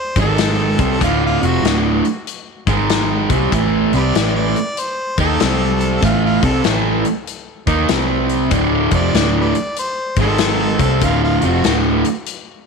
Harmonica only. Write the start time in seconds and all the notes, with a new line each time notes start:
Already playing: C5
0.21 A4
1.03 F4
1.26 F4
1.46 F#4
3.96 G4 B4 D5
4.35 D5
4.79 C5
5.20 A4
6.05 F4
6.25 F4
6.44 A4
8.95 D5
9.41 G4 B4 D5
9.79 C5
10.21 A4
11.03 F4
11.24 F4
11.45 F#4